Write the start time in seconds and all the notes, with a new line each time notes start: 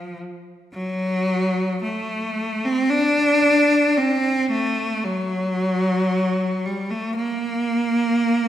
Already playing: F3
0.74 F#3
1.83 A3
2.65 C4
2.90 D4
3.97 C4
4.51 A3
5.04 F#3
6.65 G3
6.91 A3
7.16 A#3